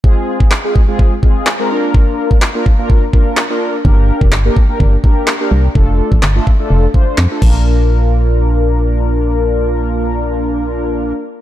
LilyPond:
<<
  \new Staff \with { instrumentName = "Analog polysynth" } { \time 4/4 \key bes \major \tempo 4 = 126 <aes c' f' aes'>4 r16 <aes c' f' aes'>16 r16 <aes c' f' aes'>8 r16 <aes c' f' aes'>8 r16 <aes c' f' bes'>16 <bes d' f' bes'>8~ | <bes d' f' bes'>4 r16 <bes d' f' bes'>16 r16 <bes d' f' bes'>8 r16 <bes d' f' bes'>8 r16 <bes d' f' bes'>8 r16 | <bes d' g' bes'>4 r16 <bes d' g' bes'>16 r16 <bes d' g' bes'>8 r16 <bes d' g' bes'>8 r16 <bes d' g' bes'>8 r16 | <a d' f' a'>4 r16 <a d' f' a'>16 r16 <a d' f' a'>8 r16 <a d' f' c''>8 r16 <a d' f' a'>16 <bes d' f' bes'>8~ |
<bes d' f' bes'>1~ | <bes d' f' bes'>1 | }
  \new Staff \with { instrumentName = "FM bass" } { \clef bass \time 4/4 \key bes \major r1 | r1 | g,,8. f,,16 g,,8 r8 g,,8 r4 c,8 | f,,8. a,,16 g,,8 r8 f,,8 r8 f,16 r16 bes,,8~ |
bes,,1~ | bes,,1 | }
  \new DrumStaff \with { instrumentName = "Drums" } \drummode { \time 4/4 bd8. bd16 <hc sn>8 bd8 bd8 bd8 <hc sn>4 | bd8. bd16 <hc sn>8 bd8 bd8 bd8 <hc sn>4 | bd8. bd16 <hc sn>8 bd8 bd8 bd8 <hc sn>4 | bd8. bd16 <hc sn>8 bd8 r8 bd8 <hc sn>8 <cymc bd>8 |
r4 r4 r4 r4 | r4 r4 r4 r4 | }
>>